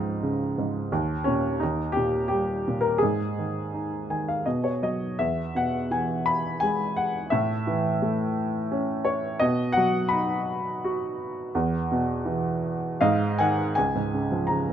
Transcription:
0.00 0.87 C#2 medium
0.00 0.58 G#2 soft
0.00 0.88 F3 soft
0.00 0.93 D#4 medium
0.00 0.93 F4 medium
0.23 0.89 C#3 soft
0.58 0.91 G#2 soft
0.92 1.59 D#2 medium
1.24 1.61 A#2 soft
1.24 1.61 C#4 medium
1.60 2.98 D#2 medium
1.60 1.96 D#4 medium
1.92 2.27 G4 medium
1.97 2.66 A#2 soft
2.28 2.84 G4 medium
2.32 3.00 G3 soft
2.68 3.01 A#2 soft
2.81 3.00 A#4 medium
2.98 4.77 G#4 medium
3.03 4.42 G#2 medium
3.38 4.08 D#3 soft
3.74 4.44 D#4 soft
4.10 4.45 D#3 soft
4.10 4.26 G#5 soft
4.28 4.45 F5 medium
4.46 5.17 B2 medium
4.46 4.63 D#5 medium
4.64 5.15 C#5 medium
4.82 5.18 F#3 soft
4.82 5.21 D#5 medium
5.19 7.28 E2 medium
5.19 5.53 E5 medium
5.55 6.93 B2 soft
5.55 5.93 F#5 medium
5.91 7.28 E3 soft
5.91 6.24 G#5 medium
6.26 6.63 B5 medium
6.60 7.30 G#3 soft
6.60 6.98 G#5 medium
6.96 7.29 F#5 medium
7.30 9.38 A2 medium
7.30 8.32 E5 medium
7.67 9.03 E3 soft
8.02 9.38 A3 soft
8.72 9.40 C#4 medium
9.05 9.42 C#5 medium
9.40 11.50 B2 medium
9.40 9.77 D#5 medium
9.72 10.12 F#5 medium
9.77 11.15 F#3 medium
10.09 12.95 B5 medium
10.13 11.51 D#4 medium
10.84 11.53 F#4 medium
11.55 12.98 E2 medium
11.92 12.99 B2 medium
12.25 12.99 E3 medium
13.01 13.74 G#2 medium
13.01 13.37 D#5 medium
13.01 13.36 F5 medium
13.38 13.75 D#3 medium
13.38 13.74 F#5 medium
13.38 13.74 G#5 medium
13.75 14.73 C#2 medium
13.75 14.51 G#5 medium
13.95 14.68 G#2 soft
14.14 14.48 C#3 soft
14.32 14.73 F3 soft
14.47 14.73 C#3 soft
14.47 14.73 A#5 medium
14.69 14.73 G#2 soft

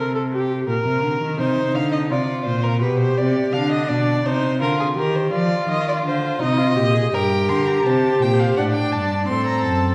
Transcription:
0.00 0.66 C3 medium
0.00 0.15 A#4 medium
0.15 0.22 A4 medium
0.33 0.67 G4 medium
0.67 0.74 A#2 medium
0.67 1.39 A#4 medium
0.85 1.04 C3 medium
1.03 1.20 D3 medium
1.21 1.40 D#3 medium
1.38 1.74 C3 medium
1.38 2.13 D#4 medium
1.38 1.77 C5 loud
1.75 2.12 D3 medium
1.75 1.92 F5 medium
1.92 1.99 D#5 medium
2.11 2.48 C3 medium
2.11 2.82 F4 medium
2.11 2.44 D5 medium
2.45 2.84 A#2 medium
2.45 2.65 C5 medium
2.63 2.80 A#4 medium
2.81 3.18 B2 medium
2.81 3.55 G4 medium
2.81 2.98 B4 medium
2.99 3.19 C5 medium
3.18 3.54 C3 medium
3.18 3.54 D5 medium
3.52 3.91 D3 medium
3.52 4.24 D4 medium
3.52 3.71 F5 loud
3.71 3.90 D#5 medium
3.88 4.25 B2 medium
3.88 4.27 D5 medium
4.25 4.63 C3 medium
4.25 4.60 D#4 medium
4.25 4.61 C5 loud
4.61 4.96 D3 medium
4.61 4.96 F4 medium
4.61 4.79 A#4 medium
4.80 4.87 G#4 medium
4.97 5.32 D#3 medium
4.97 5.31 G4 medium
4.97 5.17 A#4 medium
5.16 5.32 C5 medium
5.32 5.68 F3 medium
5.32 6.41 F4 medium
5.32 5.68 D5 medium
5.69 6.04 D#3 medium
5.69 5.87 D#5 loud
5.88 5.95 D5 medium
6.05 6.40 D3 medium
6.05 6.40 C5 medium
6.40 6.77 C3 medium
6.40 6.59 D#4 medium
6.40 7.15 D#5 loud
6.57 6.78 F4 medium
6.76 7.13 A#2 medium
6.76 6.96 G4 medium
6.94 7.12 G#4 medium
7.12 7.51 G2 medium
7.12 8.59 G4 medium
7.12 7.88 A#4 medium
7.12 7.50 G5 loud
7.49 7.85 D3 medium
7.49 7.69 C6 medium
7.67 7.85 A#5 loud
7.85 8.21 C3 medium
7.85 8.59 C5 medium
7.85 8.24 A5 medium
8.22 8.56 A#2 medium
8.22 8.41 G5 loud
8.40 8.56 F5 medium
8.57 8.93 A2 medium
8.57 9.28 D4 medium
8.57 9.32 D5 medium
8.57 8.64 F#5 loud
8.74 8.94 G5 loud
8.92 9.32 G2 medium
8.92 9.28 A5 medium
9.28 9.65 A2 medium
9.28 9.95 C4 medium
9.28 9.95 A4 medium
9.28 9.46 C6 loud
9.47 9.64 A#5 loud
9.64 9.95 F#2 medium
9.64 9.95 A5 medium

